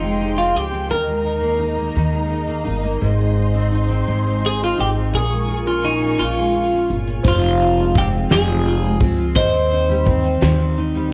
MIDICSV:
0, 0, Header, 1, 7, 480
1, 0, Start_track
1, 0, Key_signature, -4, "minor"
1, 0, Tempo, 705053
1, 618, Time_signature, 6, 3, 24, 8
1, 7579, End_track
2, 0, Start_track
2, 0, Title_t, "Marimba"
2, 0, Program_c, 0, 12
2, 4924, Note_on_c, 0, 72, 76
2, 6377, Note_on_c, 0, 75, 90
2, 6414, Note_off_c, 0, 72, 0
2, 7579, Note_off_c, 0, 75, 0
2, 7579, End_track
3, 0, Start_track
3, 0, Title_t, "String section"
3, 0, Program_c, 1, 48
3, 0, Note_on_c, 1, 56, 54
3, 0, Note_on_c, 1, 65, 58
3, 0, Note_on_c, 1, 79, 57
3, 0, Note_on_c, 1, 84, 66
3, 593, Note_off_c, 1, 65, 0
3, 609, Note_off_c, 1, 56, 0
3, 609, Note_off_c, 1, 79, 0
3, 609, Note_off_c, 1, 84, 0
3, 627, Note_on_c, 1, 75, 55
3, 628, Note_on_c, 1, 82, 71
3, 629, Note_on_c, 1, 63, 64
3, 634, Note_on_c, 1, 70, 56
3, 2049, Note_off_c, 1, 82, 0
3, 2050, Note_off_c, 1, 63, 0
3, 2052, Note_off_c, 1, 70, 0
3, 2073, Note_on_c, 1, 72, 53
3, 2075, Note_on_c, 1, 63, 67
3, 2075, Note_on_c, 1, 84, 71
3, 3476, Note_off_c, 1, 75, 0
3, 3492, Note_off_c, 1, 72, 0
3, 3493, Note_off_c, 1, 63, 0
3, 3493, Note_off_c, 1, 84, 0
3, 3499, Note_on_c, 1, 70, 64
3, 3502, Note_on_c, 1, 85, 72
3, 3503, Note_on_c, 1, 65, 61
3, 3508, Note_on_c, 1, 80, 62
3, 4924, Note_off_c, 1, 70, 0
3, 4926, Note_off_c, 1, 65, 0
3, 4926, Note_off_c, 1, 85, 0
3, 4929, Note_off_c, 1, 80, 0
3, 7579, End_track
4, 0, Start_track
4, 0, Title_t, "Clean electric guitar"
4, 0, Program_c, 2, 27
4, 0, Note_on_c, 2, 63, 69
4, 238, Note_off_c, 2, 63, 0
4, 260, Note_on_c, 2, 65, 61
4, 385, Note_off_c, 2, 65, 0
4, 385, Note_on_c, 2, 67, 70
4, 617, Note_off_c, 2, 67, 0
4, 620, Note_on_c, 2, 70, 75
4, 1132, Note_off_c, 2, 70, 0
4, 3037, Note_on_c, 2, 68, 77
4, 3151, Note_off_c, 2, 68, 0
4, 3158, Note_on_c, 2, 65, 72
4, 3261, Note_off_c, 2, 65, 0
4, 3272, Note_on_c, 2, 67, 68
4, 3335, Note_off_c, 2, 67, 0
4, 3507, Note_on_c, 2, 68, 83
4, 3838, Note_off_c, 2, 68, 0
4, 3862, Note_on_c, 2, 65, 69
4, 3980, Note_on_c, 2, 63, 62
4, 3984, Note_off_c, 2, 65, 0
4, 4218, Note_on_c, 2, 65, 69
4, 4227, Note_off_c, 2, 63, 0
4, 4731, Note_off_c, 2, 65, 0
4, 4955, Note_on_c, 2, 65, 80
4, 5431, Note_off_c, 2, 65, 0
4, 5434, Note_on_c, 2, 67, 98
4, 5496, Note_off_c, 2, 67, 0
4, 5665, Note_on_c, 2, 68, 98
4, 6114, Note_off_c, 2, 68, 0
4, 6374, Note_on_c, 2, 72, 110
4, 7547, Note_off_c, 2, 72, 0
4, 7579, End_track
5, 0, Start_track
5, 0, Title_t, "Steel-string acoustic guitar"
5, 0, Program_c, 3, 25
5, 0, Note_on_c, 3, 53, 61
5, 0, Note_on_c, 3, 60, 45
5, 0, Note_on_c, 3, 67, 48
5, 18, Note_on_c, 3, 56, 46
5, 134, Note_off_c, 3, 67, 0
5, 142, Note_on_c, 3, 67, 52
5, 250, Note_off_c, 3, 60, 0
5, 258, Note_on_c, 3, 60, 47
5, 368, Note_off_c, 3, 67, 0
5, 376, Note_on_c, 3, 67, 55
5, 484, Note_off_c, 3, 60, 0
5, 492, Note_on_c, 3, 60, 45
5, 603, Note_off_c, 3, 53, 0
5, 605, Note_on_c, 3, 51, 65
5, 663, Note_off_c, 3, 60, 0
5, 665, Note_off_c, 3, 67, 0
5, 728, Note_off_c, 3, 56, 0
5, 731, Note_on_c, 3, 56, 42
5, 845, Note_on_c, 3, 63, 46
5, 957, Note_on_c, 3, 58, 48
5, 1076, Note_off_c, 3, 63, 0
5, 1079, Note_on_c, 3, 63, 51
5, 1200, Note_off_c, 3, 58, 0
5, 1208, Note_on_c, 3, 58, 44
5, 1329, Note_off_c, 3, 51, 0
5, 1332, Note_on_c, 3, 51, 58
5, 1444, Note_off_c, 3, 56, 0
5, 1447, Note_on_c, 3, 56, 50
5, 1568, Note_off_c, 3, 63, 0
5, 1570, Note_on_c, 3, 63, 59
5, 1675, Note_off_c, 3, 58, 0
5, 1683, Note_on_c, 3, 58, 54
5, 1799, Note_off_c, 3, 63, 0
5, 1801, Note_on_c, 3, 63, 56
5, 1922, Note_off_c, 3, 58, 0
5, 1930, Note_on_c, 3, 58, 53
5, 2048, Note_on_c, 3, 44, 73
5, 2102, Note_off_c, 3, 58, 0
5, 2163, Note_off_c, 3, 56, 0
5, 2165, Note_on_c, 3, 56, 45
5, 2285, Note_off_c, 3, 63, 0
5, 2288, Note_on_c, 3, 63, 46
5, 2411, Note_on_c, 3, 60, 47
5, 2520, Note_off_c, 3, 63, 0
5, 2528, Note_on_c, 3, 63, 55
5, 2635, Note_off_c, 3, 60, 0
5, 2643, Note_on_c, 3, 60, 50
5, 2764, Note_off_c, 3, 44, 0
5, 2773, Note_on_c, 3, 44, 59
5, 2883, Note_off_c, 3, 56, 0
5, 2886, Note_on_c, 3, 56, 44
5, 2997, Note_off_c, 3, 63, 0
5, 3005, Note_on_c, 3, 63, 55
5, 3125, Note_off_c, 3, 60, 0
5, 3134, Note_on_c, 3, 60, 50
5, 3241, Note_off_c, 3, 63, 0
5, 3250, Note_on_c, 3, 63, 55
5, 3359, Note_off_c, 3, 60, 0
5, 3367, Note_on_c, 3, 60, 47
5, 3491, Note_off_c, 3, 44, 0
5, 3493, Note_on_c, 3, 46, 65
5, 3541, Note_off_c, 3, 60, 0
5, 3542, Note_off_c, 3, 63, 0
5, 3605, Note_off_c, 3, 56, 0
5, 3607, Note_on_c, 3, 56, 47
5, 3715, Note_off_c, 3, 51, 0
5, 3732, Note_on_c, 3, 65, 50
5, 3848, Note_on_c, 3, 61, 42
5, 3971, Note_off_c, 3, 65, 0
5, 3974, Note_on_c, 3, 65, 54
5, 4081, Note_off_c, 3, 61, 0
5, 4089, Note_on_c, 3, 61, 44
5, 4203, Note_off_c, 3, 46, 0
5, 4211, Note_on_c, 3, 46, 64
5, 4332, Note_off_c, 3, 56, 0
5, 4335, Note_on_c, 3, 56, 48
5, 4455, Note_off_c, 3, 65, 0
5, 4458, Note_on_c, 3, 65, 53
5, 4569, Note_off_c, 3, 61, 0
5, 4577, Note_on_c, 3, 61, 47
5, 4697, Note_off_c, 3, 65, 0
5, 4700, Note_on_c, 3, 65, 53
5, 4808, Note_off_c, 3, 61, 0
5, 4816, Note_on_c, 3, 61, 50
5, 4928, Note_on_c, 3, 53, 82
5, 4983, Note_off_c, 3, 46, 0
5, 4985, Note_off_c, 3, 61, 0
5, 5052, Note_on_c, 3, 60, 52
5, 5167, Note_off_c, 3, 65, 0
5, 5170, Note_on_c, 3, 65, 56
5, 5288, Note_off_c, 3, 56, 0
5, 5291, Note_on_c, 3, 56, 59
5, 5405, Note_off_c, 3, 60, 0
5, 5408, Note_on_c, 3, 60, 63
5, 5526, Note_off_c, 3, 65, 0
5, 5534, Note_on_c, 3, 65, 66
5, 5647, Note_off_c, 3, 53, 0
5, 5655, Note_on_c, 3, 53, 80
5, 5776, Note_off_c, 3, 60, 0
5, 5779, Note_on_c, 3, 60, 57
5, 5883, Note_off_c, 3, 65, 0
5, 5892, Note_on_c, 3, 65, 70
5, 6007, Note_off_c, 3, 56, 0
5, 6016, Note_on_c, 3, 56, 61
5, 6133, Note_off_c, 3, 60, 0
5, 6135, Note_on_c, 3, 60, 61
5, 6244, Note_off_c, 3, 65, 0
5, 6252, Note_on_c, 3, 65, 67
5, 6363, Note_off_c, 3, 53, 0
5, 6365, Note_on_c, 3, 51, 90
5, 6423, Note_off_c, 3, 65, 0
5, 6424, Note_off_c, 3, 56, 0
5, 6490, Note_off_c, 3, 60, 0
5, 6493, Note_on_c, 3, 60, 56
5, 6618, Note_on_c, 3, 63, 59
5, 6735, Note_on_c, 3, 55, 73
5, 6849, Note_off_c, 3, 60, 0
5, 6857, Note_on_c, 3, 60, 65
5, 6971, Note_off_c, 3, 63, 0
5, 6973, Note_on_c, 3, 63, 64
5, 7086, Note_off_c, 3, 51, 0
5, 7089, Note_on_c, 3, 51, 78
5, 7207, Note_off_c, 3, 60, 0
5, 7215, Note_on_c, 3, 60, 55
5, 7335, Note_off_c, 3, 63, 0
5, 7338, Note_on_c, 3, 63, 71
5, 7445, Note_off_c, 3, 55, 0
5, 7453, Note_on_c, 3, 55, 70
5, 7570, Note_off_c, 3, 60, 0
5, 7579, Note_off_c, 3, 51, 0
5, 7579, Note_off_c, 3, 55, 0
5, 7579, Note_off_c, 3, 63, 0
5, 7579, End_track
6, 0, Start_track
6, 0, Title_t, "Upright bass"
6, 0, Program_c, 4, 32
6, 0, Note_on_c, 4, 29, 70
6, 350, Note_off_c, 4, 29, 0
6, 382, Note_on_c, 4, 37, 62
6, 606, Note_off_c, 4, 37, 0
6, 621, Note_on_c, 4, 39, 74
6, 1313, Note_off_c, 4, 39, 0
6, 1337, Note_on_c, 4, 39, 69
6, 1791, Note_off_c, 4, 39, 0
6, 1817, Note_on_c, 4, 31, 75
6, 2044, Note_off_c, 4, 31, 0
6, 2057, Note_on_c, 4, 32, 74
6, 2751, Note_off_c, 4, 32, 0
6, 2779, Note_on_c, 4, 32, 76
6, 3232, Note_off_c, 4, 32, 0
6, 3260, Note_on_c, 4, 32, 65
6, 3485, Note_off_c, 4, 32, 0
6, 3499, Note_on_c, 4, 34, 76
6, 4191, Note_off_c, 4, 34, 0
6, 4220, Note_on_c, 4, 34, 64
6, 4672, Note_off_c, 4, 34, 0
6, 4697, Note_on_c, 4, 31, 72
6, 4923, Note_off_c, 4, 31, 0
6, 4933, Note_on_c, 4, 29, 95
6, 5628, Note_off_c, 4, 29, 0
6, 5656, Note_on_c, 4, 29, 92
6, 6109, Note_off_c, 4, 29, 0
6, 6133, Note_on_c, 4, 37, 84
6, 6360, Note_off_c, 4, 37, 0
6, 6373, Note_on_c, 4, 39, 98
6, 7067, Note_off_c, 4, 39, 0
6, 7095, Note_on_c, 4, 39, 91
6, 7548, Note_off_c, 4, 39, 0
6, 7579, End_track
7, 0, Start_track
7, 0, Title_t, "Drums"
7, 4930, Note_on_c, 9, 49, 98
7, 4933, Note_on_c, 9, 36, 113
7, 4998, Note_off_c, 9, 49, 0
7, 5001, Note_off_c, 9, 36, 0
7, 5171, Note_on_c, 9, 51, 40
7, 5239, Note_off_c, 9, 51, 0
7, 5408, Note_on_c, 9, 51, 43
7, 5414, Note_on_c, 9, 36, 90
7, 5476, Note_off_c, 9, 51, 0
7, 5482, Note_off_c, 9, 36, 0
7, 5645, Note_on_c, 9, 51, 63
7, 5656, Note_on_c, 9, 38, 120
7, 5713, Note_off_c, 9, 51, 0
7, 5724, Note_off_c, 9, 38, 0
7, 5888, Note_on_c, 9, 51, 33
7, 5956, Note_off_c, 9, 51, 0
7, 6126, Note_on_c, 9, 51, 54
7, 6132, Note_on_c, 9, 36, 101
7, 6194, Note_off_c, 9, 51, 0
7, 6200, Note_off_c, 9, 36, 0
7, 6365, Note_on_c, 9, 51, 67
7, 6371, Note_on_c, 9, 36, 107
7, 6433, Note_off_c, 9, 51, 0
7, 6439, Note_off_c, 9, 36, 0
7, 6609, Note_on_c, 9, 51, 44
7, 6677, Note_off_c, 9, 51, 0
7, 6843, Note_on_c, 9, 51, 43
7, 6853, Note_on_c, 9, 36, 86
7, 6911, Note_off_c, 9, 51, 0
7, 6921, Note_off_c, 9, 36, 0
7, 7085, Note_on_c, 9, 51, 70
7, 7096, Note_on_c, 9, 38, 103
7, 7153, Note_off_c, 9, 51, 0
7, 7164, Note_off_c, 9, 38, 0
7, 7331, Note_on_c, 9, 51, 34
7, 7399, Note_off_c, 9, 51, 0
7, 7579, End_track
0, 0, End_of_file